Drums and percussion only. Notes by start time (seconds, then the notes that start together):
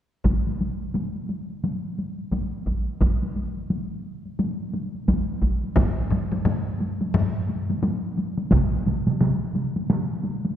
0.25 taiko, taiko high
0.47 taiko high
0.61 taiko high
0.81 taiko high
0.94 taiko high
1.16 taiko high
1.29 taiko high
1.50 taiko high
1.64 taiko high
1.85 taiko high
1.98 taiko high
2.18 taiko high
2.31 taiko, taiko high
2.54 taiko high
2.66 taiko, taiko high
2.88 taiko high
3.01 taiko, taiko high
3.22 taiko high
3.36 taiko high
3.57 taiko high
3.70 taiko high
3.91 taiko high
4.25 taiko high
4.39 taiko high
4.60 taiko high
4.74 taiko high
4.95 taiko high
5.08 taiko, taiko high
5.29 taiko high
5.42 taiko, taiko high
5.64 taiko high
5.76 taiko, taiko low-mid, taiko high
6.10 taiko low-mid, taiko high
6.32 taiko low-mid, taiko high
6.45 taiko low-mid, taiko high
6.81 taiko high
7.01 taiko high
7.14 taiko low-mid, taiko high
7.49 taiko high
7.70 taiko high
7.83 taiko high
8.17 taiko high
8.38 taiko high
8.51 taiko, taiko mid, taiko high
8.86 taiko mid, taiko high
9.07 taiko mid, taiko high
9.21 taiko mid, taiko high
9.55 taiko high
9.76 taiko high
9.90 taiko mid, taiko high
10.24 taiko high
10.45 taiko high